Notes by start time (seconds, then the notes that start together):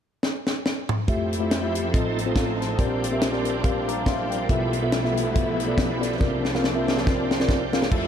0.23 snare
0.47 snare
0.66 snare
0.89 mid tom
1.07 F2 F3 G3 A3 C4 E4 F4 G4 E5, kick, closed hi-hat
1.33 closed hi-hat
1.40 A3 F4 G4 E5
1.51 snare, closed hi-hat
1.61 A3 F4 G4 E5
1.75 closed hi-hat
1.93 A1 A2 A3 C4 D#4 F4 A4 D#5, kick, closed hi-hat
2.19 closed hi-hat
2.26 C4 F4 A4 C5
2.35 A4 F5, kick, snare, closed hi-hat
2.60 C5 A5, snare, closed hi-hat
2.78 A#1 A#2 G3 A#3 C4 D4 G4 A#4 D5, kick, closed hi-hat
3.04 closed hi-hat
3.11 C4 G4 A#4 E5
3.22 snare, closed hi-hat
3.33 C4 G4 A#4 D5, snare
3.45 closed hi-hat
3.63 C4 G4 A#4 F5, kick, closed hi-hat
3.88 F5 A#5 D6, closed hi-hat
4.06 E5 F5 C6, kick, snare, closed hi-hat
4.30 A#4 G5, closed hi-hat
4.48 B1 B2 F3 A3 B3 E4 F4 G4 A4 E5, kick, closed hi-hat
4.73 closed hi-hat
4.82 B3 F4 A4 E5
4.92 snare, closed hi-hat
5.04 B3 F4 A4 E5, snare
5.17 closed hi-hat
5.33 B3 F4 A4 E5, kick, closed hi-hat
5.60 closed hi-hat
5.67 B3 F4 A4 D5
5.78 kick, snare, closed hi-hat
6.00 B3 F4 A4 D5, snare, closed hi-hat
6.19 C2 C3 A#3 C4 D4 F4 A#4 D5, kick, snare
6.45 snare
6.54 C4 F4 A#4 F5, snare
6.64 snare
6.75 C4 F4 A#4 E5
6.88 snare
6.97 snare
7.05 C4 F4 A#4 D5, kick, snare
7.31 snare
7.40 C4 F4 A#4 D5, snare
7.49 kick, snare
7.72 C4 F4 A#4 F5, snare
7.82 snare
7.90 F2 F3 A3 E4 F4 G4 A4 D5 E5, kick, crash